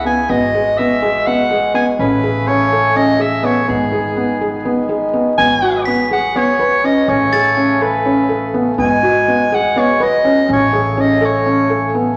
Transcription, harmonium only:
0.00 0.28 C#3 medium
0.00 0.29 B3 medium
0.00 0.28 E4 medium
0.29 1.98 B2 medium
0.29 1.98 G#3 medium
0.29 1.98 F#4 medium
2.00 3.68 C#3 medium
2.00 3.68 A3 medium
2.00 5.36 G#4 medium
3.67 5.36 D#3 medium
3.67 5.36 B3 medium
5.37 7.07 F#3 medium
5.37 7.06 B3 medium
5.37 7.06 G#4 medium
7.08 8.77 C#3 medium
7.08 8.77 A3 medium
7.08 8.77 G#4 medium
8.79 10.47 B2 medium
8.79 10.47 G#3 medium
8.79 10.47 F#4 medium
10.49 12.17 C#3 medium
10.49 12.17 A3 medium
10.49 12.17 G#4 medium

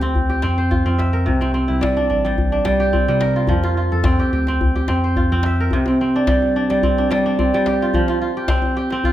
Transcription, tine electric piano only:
0.00 0.44 D2 medium
0.44 0.82 F2 medium
0.86 1.27 F2 medium
1.28 1.66 C2 medium
1.69 1.95 C2 medium
2.10 2.66 A1 medium
2.66 3.05 C2 medium
3.09 3.50 C3 medium
3.50 3.88 F2 medium
3.92 4.17 F2 medium
4.33 4.89 D2 medium
4.89 5.27 F2 medium
5.31 5.68 F2 medium

